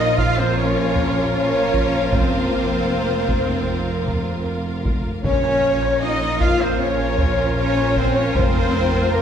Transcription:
Already playing: A#1 A#2 F3 A#3 D#4 F4 A#4 D#5 F5
0.17 F4 F5, taiko
0.37 C4 C5
0.56 C#4 C#5
0.96 taiko low
1.33 C#4 C#5
1.74 taiko
2.12 F1 C4 C5, taiko
3.29 taiko
4.07 taiko low
4.85 taiko
5.23 A#1 A#2 F3 A#3 C#4 F4 A#4 C#5 F5, taiko
5.44 taiko rim
5.82 taiko rim
6.02 D#4 D#5
6.41 F4 F5, taiko
6.60 C4 C5, taiko rim
6.79 C#4 C#5
7.18 taiko low
7.57 C#4 C#5
7.77 taiko rim
7.96 C4 C5, taiko
8.15 C#4 C#5
8.19 C#4
8.35 F1 F2 C4 C5, taiko
9.13 A#3 A#4

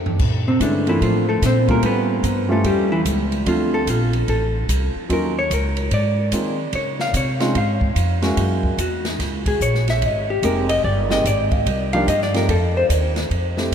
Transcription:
Already playing: F2
0.06 floor tom
0.19 A#2, kick, crash
0.48 C3 C4
0.60 G2 D3 G#3 A3 B3 C#4 D4 E4, kick, hi-hat pedal, ride
0.86 E3 A3 A#3 C4 D4 E4 F4, ride
1.01 A2 F3 F4, kick, ride
1.29 A3 A4
1.42 A#2 C4, kick, snare, hi-hat pedal, ride
1.46 C5
1.68 G3 A3 A#3 C#4 E4 F4 A#4, kick, ride
1.82 A2 B3 B4, kick, ride
2.23 G2, kick, hi-hat pedal, ride
2.48 G3 A3 C#4 E4 F4 A4
2.64 E2 G3 G4, kick, ride
2.92 E3 E4
3.05 C#2, kick, hi-hat pedal, ride
3.32 ride
3.46 D2 F3 A3 C4 D4 F4, kick, ride
3.74 A4
3.87 A#1 F4, kick, hi-hat pedal, ride
4.13 ride
4.28 A1 A4, kick, ride
4.68 C2, kick, hi-hat pedal, ride
5.09 D#2 F#3 A#3 C#4 D#4 F4 A#4, kick, ride
5.39 C#5
5.50 C#2 A#4, kick, hi-hat pedal, ride
5.77 ride
5.91 G#2 D5, kick, ride
6.31 D#3 G#3 A#3 C4 D#4 F4, kick, hi-hat pedal, ride
6.73 C#3 C#5, kick, ride
6.99 F5, snare
7.13 C3 C#5, kick, hi-hat pedal, ride
7.40 G#3 C4 C#4 D#4 F4, snare, ride
7.55 G#2 F5, kick, ride
7.81 kick
7.95 F2, kick, hi-hat pedal, ride
8.22 G#3 A#3 C#4 E4 F#4, snare, ride
8.37 F#2, kick, ride
8.63 kick
8.78 E2 F#4, kick, hi-hat pedal, ride
9.05 D#4, snare, ride
9.19 C#2, kick, snare, ride
9.23 E4
9.46 G#4, kick, ride
9.61 A#1 C#5, kick, hi-hat pedal
9.75 snare
9.88 E5, snare, ride
10.01 G#1, kick, ride
10.06 D#5
10.30 G4
10.42 F1 G#3 A#3 C4 D#4 G4 A#4, kick, hi-hat pedal, ride
10.69 D#5, ride
10.84 G1 D5, kick
11.10 G#3 A#3 C4 D#4 G4 D#5, snare
11.24 G#1 D5, kick, hi-hat pedal, ride
11.51 F5, kick, ride
11.66 C2 D#5, kick, ride
11.93 F3 A#3 D4 D#4 G4 F5, ride
12.07 G2 D#5, kick, hi-hat pedal, ride
12.22 D5, snare
12.34 F3 A3 C4 D#4 G4 A#4, snare, ride
12.48 F2 A4, kick, ride
12.77 C5
12.89 D#2, kick, hi-hat pedal, ride
13.16 snare, ride
13.30 F2, kick, ride
13.57 A3 C4 E4 G4, snare
13.71 G2

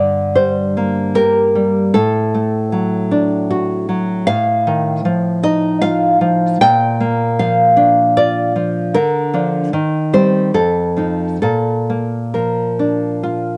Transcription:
Already playing: G2 D3 D5
0.35 G3 C5
0.77 A#3
1.15 G4 A#4
1.55 G3
1.94 A2 A4
2.34 A3
2.72 F#3
3.11 D4
3.51 F#4
3.89 F#3
4.27 A2 F5
4.67 D#3
5.05 F3
5.43 D#4 D#5
5.82 F4 F5
6.21 F3
6.61 A#2 G5
7.00 A#3
7.39 F3 F5
7.77 D4
8.17 F4 D5
8.56 F3
8.94 D3 A#4
9.34 F3 D4
9.73 D#3
10.13 G3 C4 C5
10.54 F2 A4
10.97 F3 D#4
11.42 A#2 A4
11.90 A#3
12.34 F3 A#4
12.79 D4
13.23 F4

